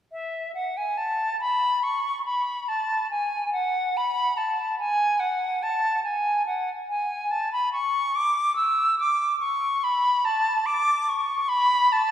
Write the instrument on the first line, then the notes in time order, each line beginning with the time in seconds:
flute
0.12 E5
0.54 F#5
0.77 G#5
0.97 A5
1.40 B5
1.83 C#6
2.25 B5
2.68 A5
3.10 G#5
3.52 F#5
3.97 B5
4.37 A5
4.79 G#5
5.19 F#5
5.62 A5
6.03 G#5
6.46 F#5
6.89 G#5
7.31 A5
7.52 B5
7.72 C#6
8.15 D6
8.55 E6
8.99 D6
9.40 C#6
9.83 B5
10.25 A5
10.66 D6
11.09 C#6
11.48 B5
11.92 A5